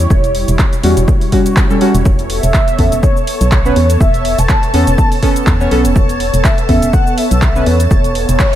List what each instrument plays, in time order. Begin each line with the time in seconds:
Already playing: analog synth pad G3 E4 C#5, string machine G4, soft synth lead C#5
0.10 fm bass E1, kick, shaker
0.24 closed hi-hat, shaker
0.35 open hi-hat
0.48 fm bass E1, closed hi-hat, shaker
0.59 kick, clap, shaker
0.73 closed hi-hat, shaker
0.83 fm bass E2, synth stab G3 C#4 F#4, open hi-hat
0.97 fm bass E1, closed hi-hat, shaker
1.08 kick, shaker
1.21 open hi-hat, shaker
1.32 synth stab G3 C#4 F#4, kick, open hi-hat
1.46 closed hi-hat, shaker
1.56 kick, clap, shaker
1.70 synth stab G3 C#4 A4, shaker
1.81 synth stab G3 C#4 F#4, open hi-hat
1.95 fm bass E1, closed hi-hat, shaker
2.06 fm bass E1, analog synth pad B3 A4, string machine A5, kick, shaker
2.19 closed hi-hat, shaker
2.30 soft synth lead E5, open hi-hat
2.43 fm bass E1, closed hi-hat, shaker
2.54 kick, clap, shaker
2.68 closed hi-hat, shaker
2.79 fm bass E2, synth stab B3 C#4 A4, kick, open hi-hat
2.92 fm bass E1, closed hi-hat, shaker
3.03 soft synth lead C#5, kick, shaker
3.17 shaker
3.27 open hi-hat
3.41 fm bass B1, closed hi-hat, shaker
3.52 soft synth lead C#5, kick, clap, shaker
3.65 synth stab B3 C#4 B4, shaker
3.76 fm bass E2, open hi-hat
3.90 closed hi-hat, shaker
4.01 fm bass E1, soft synth lead E5, kick, shaker
4.14 closed hi-hat, shaker
4.25 open hi-hat
4.38 fm bass E1, soft synth lead A5, closed hi-hat, shaker
4.49 kick, clap, shaker
4.63 closed hi-hat, shaker
4.74 fm bass E2, synth stab B3 C#4 A4, open hi-hat
4.87 fm bass E1, closed hi-hat, shaker
4.98 kick, shaker
5.12 open hi-hat, shaker
5.22 synth stab B3 C#4 A4, kick, open hi-hat
5.36 closed hi-hat, shaker
5.47 fm bass E2, kick, clap, shaker
5.60 synth stab B3 C#4 C#5, shaker
5.71 fm bass B1, synth stab B3 C#4 A4, open hi-hat
5.85 fm bass E1, closed hi-hat, shaker
5.96 fm bass E1, soft synth lead C#5, kick, shaker
6.09 closed hi-hat, shaker
6.20 open hi-hat
6.34 fm bass E1, closed hi-hat, shaker
6.44 soft synth lead E5, kick, clap, shaker
6.58 closed hi-hat, shaker
6.69 fm bass E2, synth stab B3 C#4 A4, kick, open hi-hat
6.82 fm bass E1, closed hi-hat, shaker
6.93 soft synth lead F#5, kick, shaker
7.07 shaker
7.18 soft synth lead E5, open hi-hat
7.31 fm bass B1, closed hi-hat, shaker
7.42 kick, clap, shaker
7.55 synth stab B3 C#4 B4, shaker
7.66 fm bass E2, soft synth lead C#5, open hi-hat
7.80 closed hi-hat, shaker
7.91 fm bass E1, kick, noise sweep, shaker
8.04 closed hi-hat, shaker
8.15 open hi-hat
8.29 fm bass E1, closed hi-hat, shaker
8.39 kick, clap, shaker